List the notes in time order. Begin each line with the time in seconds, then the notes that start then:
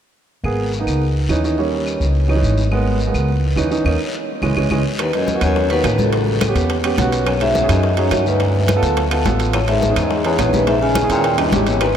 0.44 G#1 A#3 B3 G#4, long guiro, claves
0.73 short guiro
0.79 A#3 B3 D#4
0.86 C#2, short guiro, claves
1.02 long guiro
1.29 D#2 E3 C#4 D#4, short guiro, claves
1.44 E3 C#4 D#4, short guiro
1.58 G3 A#3 C#4, long guiro
1.86 short guiro, claves
2.00 C#2, short guiro
2.15 long guiro
2.28 E3 C#4 D#4, claves
2.36 E3 C#4 D#4
2.42 G#1, short guiro
2.58 short guiro
2.71 G#3 A#3 B3, long guiro, claves
3.00 short guiro
3.07 G#3 A#3 B3
3.14 C#2, short guiro, claves
3.28 long guiro
3.56 D#2 E3 C#4 D#4, short guiro, claves
3.71 E3 C#4 D#4, short guiro
3.85 D#2 A#3 C#4 D#4, long guiro, claves
4.42 C#2 E3 G#3 C#4, long guiro, claves
4.56 C#2 E3 G#3 C#4, long guiro, claves
4.70 C#2 E3 G#3 C#4, long guiro, claves
4.99 D#2 B4, high bongo, high conga, high timbale, long guiro, claves
5.13 F#2 D#5, high conga, high timbale
5.27 high bongo, high conga, low timbale, short guiro
5.34 A#3 B3 F#4
5.41 D#2 F#2 C#5, high conga, high timbale, short guiro, claves
5.56 high bongo, high conga, long guiro
5.70 D#2 A#3 B3 F#4 B4, high bongo, high conga, high timbale
5.84 A1 A#3 B3 C#4, high bongo, low bongo, high conga, high timbale, low timbale, short guiro, claves
5.98 C#2 A4, high bongo, high conga, short guiro
6.13 high bongo, high conga, high timbale, long guiro
6.27 high conga
6.41 high bongo, high conga, high timbale, low timbale, short guiro, claves
6.47 B3 C#4 G4
6.55 E2, high conga, high timbale, short guiro
6.70 high bongo, high conga, high timbale, long guiro
6.83 B3 C#4 G4, high conga, high timbale, claves
6.98 B1 B3 C#4 F#4, high bongo, low bongo, high conga, high timbale, low timbale, short guiro
7.12 high bongo, high conga, high timbale, short guiro
7.26 F#2 C#5, high bongo, high conga, high timbale, long guiro, claves
7.40 G#2 E5, high conga, high timbale
7.55 high bongo, high conga, low timbale, short guiro
7.62 C#4 D#4 G#4
7.69 F#2 D#5, high conga, high timbale, short guiro, claves
7.83 high bongo, high conga, long guiro
7.97 F#2 C#4 D#4 G#4 C#5, high bongo, high conga, high timbale
8.11 G2 C#4 D#4 F#4, high bongo, low bongo, high conga, high timbale, low timbale, short guiro, claves
8.26 D2 B4, high bongo, short guiro
8.40 high bongo, high conga, high timbale, long guiro
8.55 high conga
8.68 high bongo, high conga, high timbale, low timbale, short guiro, claves
8.75 B3 F4 A4
8.82 D2, high conga, high timbale, short guiro
8.97 high bongo, high conga, high timbale, long guiro
9.11 B3 F4 A4, high bongo, high conga, high timbale, claves
9.24 A1 B3 F4 A4, high bongo, low bongo, high conga, high timbale, low timbale, short guiro
9.39 high bongo, high conga, high timbale, short guiro
9.53 E2 C#5, high bongo, high conga, high timbale, long guiro, claves
9.68 G#2 E5, high conga, high timbale
9.82 high bongo, high conga, low timbale, short guiro
9.89 B3 C#4 D#4 G#4
9.96 E2 G#2 D#5, high conga, high timbale, short guiro, claves
10.11 high bongo, high conga, long guiro
10.24 E2 B3 C#4 D#4 G#4 C#5, high bongo, high conga, high timbale
10.38 A#1 B3 C#4 D#4 G#4, high bongo, low bongo, high conga, high timbale, low timbale, short guiro, claves
10.53 D#2 B4, high bongo, high conga, short guiro
10.67 G#2 E5, high bongo, high conga, high timbale, long guiro
10.81 C#3 G#5, high conga
10.95 high bongo, high conga, high timbale, low timbale, short guiro, claves
11.02 C#4 E4 G#4
11.09 D#2 A#2 G5, high conga, high timbale, short guiro
11.24 high bongo, high conga, high timbale, long guiro
11.38 G2 C#4 E4 G4 D#5, high bongo, high conga, high timbale, claves
11.52 G#1 C#4 E4 G4, high bongo, low bongo, high conga, high timbale, low timbale, short guiro
11.67 E2 C#5, high bongo, high conga, high timbale, short guiro
11.81 D#2 B4, high bongo, high conga, high timbale, long guiro, claves